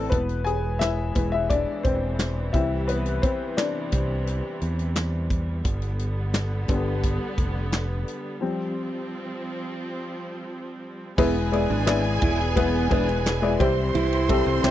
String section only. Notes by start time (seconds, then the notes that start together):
0.12 E3 G#3
2.54 C3 G3
5.66 D3 B3
8.42 F3 C4
11.18 E3 G#3 B3
13.60 G3 C4